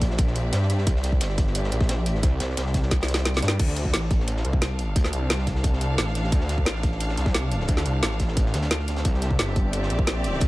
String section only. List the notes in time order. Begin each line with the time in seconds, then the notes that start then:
Already playing: C4 G4 D5 E5
3.60 D4
3.72 A4
3.98 F5
9.05 C4
9.11 G4
9.18 E5
9.35 D5